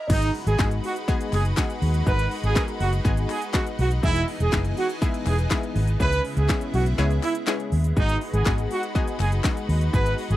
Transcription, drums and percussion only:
0.10 kick loud
0.10 crash loud
0.10 shaker medium
0.22 closed hi-hat medium
0.22 shaker medium
0.35 open hi-hat medium
0.35 shaker soft
0.47 closed hi-hat medium
0.47 shaker medium
0.59 kick loud
0.59 snare medium
0.59 clap loud
0.59 clap medium
0.59 shaker medium
0.71 closed hi-hat medium
0.71 shaker medium
0.84 open hi-hat medium
0.84 shaker medium
0.96 closed hi-hat medium
0.96 shaker medium
1.08 kick loud
1.08 shaker medium
1.21 closed hi-hat medium
1.21 shaker medium
1.33 clap medium
1.33 open hi-hat medium
1.33 shaker medium
1.45 closed hi-hat medium
1.45 shaker medium
1.57 kick loud
1.57 snare loud
1.57 clap medium
1.57 clap loud
1.57 shaker medium
1.70 closed hi-hat medium
1.70 shaker medium
1.82 open hi-hat medium
1.82 shaker medium
1.94 closed hi-hat medium
1.94 shaker medium
2.06 kick loud
2.06 shaker medium
2.19 closed hi-hat medium
2.19 shaker medium
2.31 open hi-hat medium
2.31 shaker soft
2.44 closed hi-hat medium
2.44 shaker medium
2.56 kick loud
2.56 snare medium
2.56 clap loud
2.56 clap medium
2.56 shaker medium
2.68 closed hi-hat medium
2.68 shaker medium
2.80 open hi-hat medium
2.80 shaker medium
2.93 closed hi-hat medium
2.93 shaker medium
3.05 kick loud
3.05 shaker medium
3.17 closed hi-hat medium
3.17 shaker medium
3.29 clap medium
3.29 open hi-hat medium
3.29 shaker medium
3.42 closed hi-hat medium
3.42 shaker medium
3.54 kick loud
3.54 snare medium
3.54 clap loud
3.54 clap medium
3.54 shaker medium
3.67 closed hi-hat medium
3.67 shaker medium
3.79 open hi-hat medium
3.79 shaker medium
3.91 closed hi-hat medium
3.91 shaker medium
4.03 kick loud
4.03 shaker medium
4.16 closed hi-hat medium
4.16 shaker medium
4.28 open hi-hat medium
4.28 shaker soft
4.40 closed hi-hat medium
4.40 shaker medium
4.52 kick loud
4.52 snare medium
4.52 clap loud
4.52 clap medium
4.52 shaker medium
4.65 closed hi-hat medium
4.65 shaker medium
4.77 open hi-hat medium
4.77 shaker medium
4.89 closed hi-hat medium
4.89 shaker medium
5.02 kick loud
5.02 shaker medium
5.14 closed hi-hat medium
5.14 shaker medium
5.26 clap medium
5.26 open hi-hat medium
5.26 shaker medium
5.38 closed hi-hat medium
5.38 shaker medium
5.51 kick loud
5.51 snare loud
5.51 clap loud
5.51 clap medium
5.51 shaker medium
5.63 closed hi-hat medium
5.63 shaker medium
5.76 open hi-hat medium
5.76 shaker medium
5.88 closed hi-hat medium
5.88 shaker medium
6.00 kick loud
6.00 shaker medium
6.12 closed hi-hat medium
6.12 shaker medium
6.25 open hi-hat medium
6.25 shaker soft
6.37 closed hi-hat medium
6.37 shaker medium
6.49 kick loud
6.49 snare medium
6.49 clap loud
6.49 clap medium
6.49 shaker medium
6.61 closed hi-hat medium
6.61 shaker medium
6.74 open hi-hat medium
6.74 shaker medium
6.86 closed hi-hat medium
6.86 shaker medium
6.98 shaker medium
7.11 closed hi-hat medium
7.11 shaker medium
7.23 clap medium
7.23 open hi-hat medium
7.23 shaker medium
7.35 closed hi-hat medium
7.35 shaker medium
7.47 snare medium
7.47 clap loud
7.47 clap medium
7.47 shaker medium
7.60 closed hi-hat medium
7.60 shaker medium
7.72 open hi-hat medium
7.72 shaker medium
7.84 closed hi-hat medium
7.84 shaker medium
7.97 kick loud
7.97 shaker medium
8.09 closed hi-hat medium
8.09 shaker medium
8.21 open hi-hat medium
8.21 shaker soft
8.34 closed hi-hat medium
8.34 shaker medium
8.46 kick loud
8.46 snare medium
8.46 clap loud
8.46 clap medium
8.46 shaker medium
8.58 closed hi-hat medium
8.58 shaker medium
8.71 open hi-hat medium
8.71 shaker medium
8.83 closed hi-hat medium
8.83 shaker medium
8.95 kick loud
8.95 shaker medium
9.08 closed hi-hat medium
9.08 shaker medium
9.20 clap medium
9.20 open hi-hat medium
9.20 shaker medium
9.32 closed hi-hat medium
9.32 shaker medium
9.44 kick loud
9.44 snare loud
9.44 clap medium
9.44 clap loud
9.44 shaker medium
9.57 closed hi-hat medium
9.57 shaker medium
9.69 open hi-hat medium
9.69 shaker medium
9.81 closed hi-hat medium
9.81 shaker medium
9.94 kick loud
9.94 shaker medium
10.06 closed hi-hat medium
10.06 shaker medium
10.18 open hi-hat medium
10.18 shaker soft
10.30 closed hi-hat medium
10.30 shaker medium

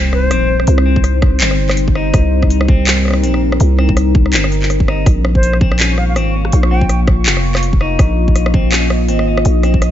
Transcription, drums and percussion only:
0.13 cross-stick medium
0.31 cross-stick medium
0.31 closed hi-hat medium
0.60 cross-stick medium
0.67 closed hi-hat medium
0.78 cross-stick medium
0.96 kick medium
1.04 cross-stick medium
1.04 closed hi-hat medium
1.22 kick loud
1.22 cross-stick medium
1.40 clap loud
1.40 closed hi-hat medium
1.51 cross-stick medium
1.69 cross-stick medium
1.69 clap soft
1.77 closed hi-hat medium
1.88 kick medium
1.95 cross-stick medium
2.14 kick loud
2.14 cross-stick medium
2.14 closed hi-hat medium
2.42 kick medium
2.42 cross-stick medium
2.50 closed hi-hat medium
2.61 cross-stick medium
2.68 kick loud
2.87 cross-stick medium
2.87 clap loud
2.87 closed hi-hat medium
3.05 cross-stick soft
3.08 cross-stick soft
3.11 cross-stick medium
3.13 cross-stick medium
3.24 closed hi-hat medium
3.34 cross-stick medium
3.52 cross-stick medium
3.60 closed hi-hat medium
3.79 cross-stick medium
3.89 kick medium
3.97 cross-stick medium
3.97 closed hi-hat medium
4.15 kick loud
4.26 cross-stick soft
4.33 clap loud
4.33 closed hi-hat medium
4.44 cross-stick medium
4.52 closed hi-hat soft
4.62 clap soft
4.70 cross-stick soft
4.70 closed hi-hat medium
4.80 kick medium
4.88 cross-stick medium
5.06 kick loud
5.06 cross-stick medium
5.06 closed hi-hat medium
5.25 cross-stick medium
5.35 kick medium
5.43 closed hi-hat medium
5.53 cross-stick medium
5.61 kick loud
5.72 cross-stick medium
5.79 clap loud
5.79 closed hi-hat medium
5.98 cross-stick medium
6.16 cross-stick medium
6.16 closed hi-hat medium
6.45 cross-stick medium
6.52 closed hi-hat medium
6.63 cross-stick medium
6.81 kick medium
6.89 cross-stick medium
6.89 closed hi-hat medium
7.07 kick loud
7.07 cross-stick medium
7.26 clap loud
7.26 closed hi-hat medium
7.37 cross-stick medium
7.55 cross-stick medium
7.55 clap soft
7.63 closed hi-hat medium
7.73 kick medium
7.81 cross-stick medium
7.99 kick loud
7.99 cross-stick medium
7.99 closed hi-hat medium
8.28 kick medium
8.36 cross-stick medium
8.36 closed hi-hat medium
8.46 cross-stick medium
8.54 kick loud
8.72 cross-stick medium
8.72 clap loud
8.72 closed hi-hat medium
8.90 cross-stick medium
9.09 closed hi-hat medium
9.19 cross-stick medium
9.37 cross-stick medium
9.45 closed hi-hat medium
9.63 cross-stick medium
9.63 closed hi-hat soft
9.74 kick medium
9.82 cross-stick medium
9.82 closed hi-hat medium

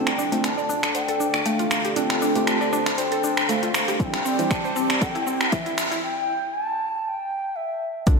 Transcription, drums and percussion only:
0.07 finger snap medium
0.07 closed hi-hat soft
0.07 shaker soft
0.19 shaker medium
0.32 closed hi-hat soft
0.32 shaker soft
0.44 finger snap medium
0.44 closed hi-hat medium
0.44 shaker medium
0.58 shaker soft
0.70 shaker medium
0.83 finger snap medium
0.83 closed hi-hat soft
0.83 shaker soft
0.95 closed hi-hat medium
0.95 shaker medium
1.08 closed hi-hat soft
1.08 shaker soft
1.21 shaker medium
1.34 finger snap medium
1.34 shaker soft
1.46 closed hi-hat medium
1.46 shaker medium
1.59 closed hi-hat soft
1.59 shaker soft
1.71 finger snap medium
1.71 shaker medium
1.85 closed hi-hat soft
1.85 shaker soft
1.96 closed hi-hat medium
1.96 shaker soft
2.10 finger snap loud
2.10 closed hi-hat soft
2.10 shaker soft
2.22 shaker medium
2.35 closed hi-hat soft
2.35 shaker soft
2.47 finger snap medium
2.47 closed hi-hat medium
2.47 shaker medium
2.61 shaker soft
2.73 shaker medium
2.86 finger snap medium
2.86 closed hi-hat soft
2.86 shaker soft
2.98 closed hi-hat medium
2.98 shaker medium
3.12 closed hi-hat soft
3.12 shaker soft
3.24 shaker medium
3.37 finger snap medium
3.37 shaker soft
3.49 closed hi-hat medium
3.49 shaker medium
3.63 closed hi-hat soft
3.63 shaker soft
3.74 finger snap loud
3.74 shaker loud
3.88 closed hi-hat soft
3.88 shaker soft
4.00 kick loud
4.00 closed hi-hat medium
4.00 shaker soft
4.14 finger snap medium
4.14 closed hi-hat soft
4.14 shaker soft
4.26 shaker medium
4.39 closed hi-hat soft
4.39 shaker soft
4.51 finger snap medium
4.51 kick loud
4.51 closed hi-hat medium
4.51 shaker medium
4.65 shaker soft
4.76 shaker medium
4.90 finger snap loud
4.90 closed hi-hat soft
4.90 shaker soft
5.02 kick loud
5.02 closed hi-hat medium
5.02 shaker medium
5.15 closed hi-hat soft
5.15 shaker soft
5.27 shaker loud
5.41 finger snap medium
5.41 shaker soft
5.52 kick loud
5.52 closed hi-hat medium
5.52 shaker medium
5.66 closed hi-hat soft
5.66 shaker soft
5.78 finger snap loud
5.78 shaker loud
5.92 closed hi-hat soft
5.92 shaker soft
8.07 kick loud
8.07 closed hi-hat medium
8.07 shaker medium

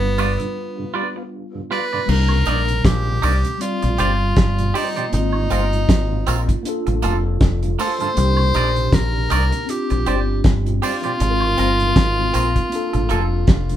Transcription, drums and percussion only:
0.18 open hi-hat medium
0.18 tambourine medium
0.18 high woodblock medium
0.40 closed hi-hat medium
2.09 crash loud
2.29 high woodblock medium
2.45 closed hi-hat medium
2.45 tambourine soft
2.68 closed hi-hat medium
2.85 kick loud
2.85 snare loud
2.85 closed hi-hat loud
3.22 open hi-hat medium
3.22 tambourine medium
3.22 high woodblock medium
3.45 closed hi-hat medium
3.61 closed hi-hat loud
3.82 closed hi-hat medium
3.98 closed hi-hat medium
3.98 tambourine soft
4.36 kick loud
4.36 snare loud
4.36 closed hi-hat medium
4.58 closed hi-hat medium
4.75 open hi-hat medium
4.75 tambourine medium
4.97 closed hi-hat medium
5.13 closed hi-hat loud
5.33 high woodblock medium
5.50 closed hi-hat medium
5.50 tambourine medium
5.73 closed hi-hat medium
5.89 kick loud
5.89 snare loud
5.89 closed hi-hat loud
6.27 closed hi-hat medium
6.27 tambourine medium
6.27 high woodblock medium
6.49 kick medium
6.49 closed hi-hat medium
6.65 closed hi-hat loud
6.87 closed hi-hat medium
7.02 closed hi-hat medium
7.02 tambourine soft
7.41 kick loud
7.41 snare loud
7.41 closed hi-hat medium
7.63 closed hi-hat medium
7.79 open hi-hat medium
7.79 tambourine medium
8.00 closed hi-hat medium
8.17 closed hi-hat loud
8.37 high woodblock medium
8.54 closed hi-hat medium
8.54 tambourine soft
8.76 closed hi-hat soft
8.92 kick loud
8.92 snare loud
8.92 closed hi-hat loud
9.30 closed hi-hat medium
9.30 tambourine medium
9.30 high woodblock medium
9.52 closed hi-hat medium
9.69 closed hi-hat loud
9.90 closed hi-hat soft
10.06 closed hi-hat medium
10.06 tambourine medium
10.44 kick loud
10.44 snare loud
10.44 closed hi-hat medium
10.66 closed hi-hat medium
10.82 open hi-hat medium
10.82 tambourine medium
11.03 closed hi-hat medium
11.20 closed hi-hat loud
11.40 high woodblock medium
11.58 closed hi-hat medium
11.58 tambourine soft
11.80 closed hi-hat soft
11.96 kick loud
11.96 snare loud
11.96 closed hi-hat loud
12.34 closed hi-hat medium
12.34 tambourine medium
12.34 high woodblock medium
12.56 kick medium
12.56 closed hi-hat medium
12.72 closed hi-hat loud
12.94 closed hi-hat medium
13.09 closed hi-hat medium
13.09 tambourine soft
13.47 kick loud
13.47 snare loud
13.47 closed hi-hat medium
13.69 closed hi-hat medium

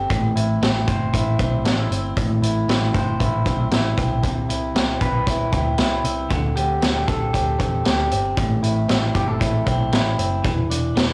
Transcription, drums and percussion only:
0.10 kick loud
0.10 closed hi-hat medium
0.37 closed hi-hat medium
0.62 snare loud
0.62 closed hi-hat medium
0.88 kick medium
0.88 closed hi-hat medium
1.14 kick medium
1.14 closed hi-hat medium
1.39 kick medium
1.39 closed hi-hat medium
1.65 snare medium
1.65 closed hi-hat medium
1.92 closed hi-hat medium
2.17 kick loud
2.17 closed hi-hat medium
2.43 closed hi-hat medium
2.69 snare loud
2.69 closed hi-hat medium
2.94 kick medium
2.94 closed hi-hat medium
3.20 kick medium
3.20 closed hi-hat medium
3.46 kick medium
3.46 closed hi-hat medium
3.71 snare medium
3.71 closed hi-hat medium
3.98 kick medium
3.98 closed hi-hat medium
4.23 kick loud
4.23 closed hi-hat medium
4.50 closed hi-hat medium
4.75 snare loud
4.75 closed hi-hat medium
5.01 kick medium
5.01 closed hi-hat medium
5.27 kick medium
5.27 closed hi-hat medium
5.52 kick medium
5.52 closed hi-hat medium
5.78 snare medium
5.78 closed hi-hat medium
6.05 closed hi-hat medium
6.30 kick loud
6.30 closed hi-hat medium
6.57 closed hi-hat medium
6.82 snare medium
6.82 closed hi-hat medium
7.08 kick medium
7.08 closed hi-hat medium
7.34 kick medium
7.34 closed hi-hat medium
7.60 kick medium
7.60 closed hi-hat medium
7.85 snare medium
7.85 closed hi-hat medium
8.11 closed hi-hat medium
8.37 kick loud
8.37 closed hi-hat medium
8.63 closed hi-hat medium
8.89 snare loud
8.89 closed hi-hat medium
9.15 kick medium
9.15 closed hi-hat medium
9.41 kick medium
9.41 closed hi-hat medium
9.67 kick medium
9.67 closed hi-hat medium
9.92 snare medium
9.92 closed hi-hat medium
10.19 closed hi-hat medium
10.44 kick medium
10.44 closed hi-hat medium
10.71 closed hi-hat medium
10.97 snare loud
10.97 closed hi-hat medium

